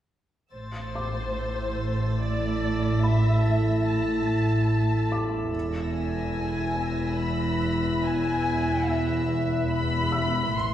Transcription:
0.53 double bass section A1, cello section A2, synth texture E4 A4 E5, violin section C5 E6 A6
0.95 felt piano D6
2.21 violin section D5
3.03 violin section E5, felt piano B5
3.32 violin section A#6
3.87 violin section A5
5.12 felt piano D6
5.54 double bass section E1, cello section E2, synth texture E4 B4 E5, violin section E6 A#6
5.93 violin section G#5
7.20 violin section B5
8.04 violin section G#5
8.85 violin section E5
9.71 violin section B5
10.12 felt piano E5 E6
10.52 double bass section A1, cello section A2, synth texture E4 A4 E5, violin section C6

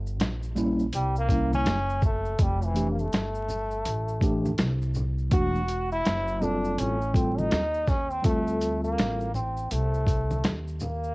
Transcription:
Already playing: upright bass G1
0.07 maracas
0.20 upright bass A#1, snare, closed hi-hat, maracas
0.43 maracas
0.55 tine electric piano G3 A#3 C#4 E4, low conga, maracas, shaker
0.79 maracas
0.93 upright bass C2, trombone G3, closed hi-hat, maracas
1.16 trombone A#3, maracas
1.28 tine electric piano G3 A#3 C#4 E4, kick, closed hi-hat, maracas, shaker
1.53 trombone C#4, high conga, maracas
1.66 upright bass F#1, snare, closed hi-hat, maracas
1.90 maracas
2.02 trombone A3, kick, low conga, shaker, maracas
2.25 maracas
2.39 upright bass F1, trombone G3, kick, closed hi-hat, maracas
2.62 trombone E3, maracas
2.73 tine electric piano E3 A3 D4 G4, closed hi-hat, shaker, maracas
2.91 trombone A#3
2.99 trombone A3, maracas
3.12 upright bass G1, snare, closed hi-hat, maracas
3.35 maracas
3.48 low conga, maracas, shaker
3.71 maracas
3.85 upright bass A1, closed hi-hat, maracas
4.08 maracas
4.21 tine electric piano E3 A3 D4 G4, kick, closed hi-hat, maracas, shaker
4.46 high conga, maracas
4.58 upright bass C2, snare, closed hi-hat, maracas
4.82 maracas
4.94 low conga, shaker, maracas
5.18 maracas
5.30 upright bass E1, tine electric piano E3 A3 D4 F#4, trombone F#4, kick, closed hi-hat, maracas
5.55 maracas
5.68 closed hi-hat, shaker, maracas
5.92 trombone E4, maracas
6.05 upright bass F#1, snare, closed hi-hat, maracas
6.28 maracas
6.40 tine electric piano G3 C4 F4 A4, trombone D4, low conga, maracas, shaker
6.65 maracas
6.78 upright bass A1, trombone C#4, closed hi-hat, maracas
7.01 maracas
7.13 tine electric piano G3 C4 F4 A4, trombone C4, kick, closed hi-hat, maracas, shaker
7.38 trombone D#4, high conga, maracas
7.51 upright bass D#2, snare, closed hi-hat, maracas
7.74 maracas
7.87 trombone C#4, kick, snare, low conga, shaker, maracas
8.10 trombone C4, maracas
8.22 upright bass D2, tine electric piano G3 C4 F4 A4, trombone A3, kick, closed hi-hat, maracas
8.47 maracas
8.61 closed hi-hat, shaker, maracas
8.84 trombone A#3, maracas
8.98 upright bass A1, snare, closed hi-hat, maracas
9.20 maracas
9.34 trombone C4, low conga, maracas, shaker
9.57 maracas
9.71 upright bass C2, trombone A3, closed hi-hat, maracas
9.94 maracas
10.07 kick, closed hi-hat, maracas, shaker
10.31 high conga, maracas
10.44 upright bass D#2, snare, closed hi-hat, maracas
10.68 maracas
10.80 trombone A#3, low conga, shaker, maracas
11.04 maracas

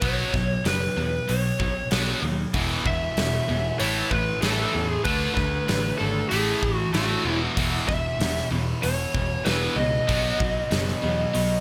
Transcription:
0.01 picked electric bass B1, distorted electric guitar B2 F#3 B3, lead electric guitar C#5, kick, open hi-hat
0.33 picked electric bass B1, distorted electric guitar B2 F#3, kick, snare
0.64 picked electric bass F#1, distorted electric guitar B2 F#3, lead electric guitar B4, snare, open hi-hat
0.96 picked electric bass E2, distorted electric guitar B2 F#3
1.28 picked electric bass B1, distorted electric guitar B2 F#3, lead electric guitar C#5, open hi-hat
1.59 picked electric bass B1, distorted electric guitar B2 F#3, kick
1.91 picked electric bass B1, distorted electric guitar B2 F#3 B3, snare, open hi-hat
2.23 picked electric bass D#2, distorted electric guitar B2 F#3
2.53 picked electric bass E1, distorted electric guitar E2 B2 E3, kick, open hi-hat
2.86 picked electric bass E1, distorted electric guitar E2 B2, lead electric guitar E5, kick
3.17 picked electric bass E1, distorted electric guitar E2 B2 E3, snare, open hi-hat
3.48 picked electric bass E1, distorted electric guitar E2 B2 E3
3.79 picked electric bass A1, distorted electric guitar A2 E3 A3, lead electric guitar C#5, open hi-hat
4.10 picked electric bass A1, distorted electric guitar A2 E3, lead electric guitar B4, kick
4.42 picked electric bass A1, distorted electric guitar A2 E3 A3, lead electric guitar A4, snare, open hi-hat
4.73 picked electric bass E2, distorted electric guitar A2 E3 A3
4.89 lead electric guitar G#4
5.05 picked electric bass D2, distorted electric guitar D3 A3 D4, lead electric guitar B4, kick, open hi-hat
5.35 picked electric bass D2, distorted electric guitar D3 A3, lead electric guitar B4, kick, snare
5.68 picked electric bass A1, distorted electric guitar D3 A3 D4, snare, open hi-hat
5.98 picked electric bass G#1, distorted electric guitar D3 A3 D4, lead electric guitar A4
6.29 picked electric bass A1, distorted electric guitar A2 E3 A3, lead electric guitar G#4, open hi-hat
6.63 picked electric bass A1, distorted electric guitar A2 E3, kick
6.75 lead electric guitar F#4
6.93 picked electric bass A1, distorted electric guitar A2 E3 A3, lead electric guitar F#4, snare, open hi-hat
7.25 picked electric bass E1, distorted electric guitar E2 B2 E3
7.57 picked electric bass E1, distorted electric guitar E2 B2 E3, kick, open hi-hat
7.88 picked electric bass E1, distorted electric guitar E2 B2, lead electric guitar E5, kick, snare
8.20 picked electric bass E1, distorted electric guitar E2 B2 E3, snare, open hi-hat
8.37 snare
8.51 picked electric bass E1, distorted electric guitar E2 B2 E3
8.82 picked electric bass E1, distorted electric guitar E2 B2 E3, lead electric guitar C#5, open hi-hat
9.15 picked electric bass E1, distorted electric guitar E2 B2, kick
9.44 picked electric bass E1, distorted electric guitar E2 B2 E3, lead electric guitar B4, snare, open hi-hat
9.76 picked electric bass C#2, distorted electric guitar E2 B2 E3, lead electric guitar D#5
10.09 picked electric bass B1, distorted electric guitar B2 F#3 B3, kick, open hi-hat
10.40 picked electric bass B1, distorted electric guitar B2 F#3, kick
10.71 picked electric bass F#1, distorted electric guitar B2 F#3 B3, snare, open hi-hat
10.88 snare
11.03 picked electric bass E2, distorted electric guitar B2 F#3 B3
11.34 picked electric bass B1, distorted electric guitar B2 F#3 B3, open hi-hat

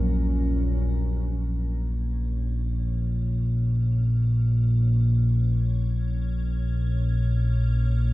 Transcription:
Already playing: synth drone A#1 A#2, analog synth pad F#3 C#4 A#4
1.38 synth drone A#1 A#2, ambient pad C#4 C#5

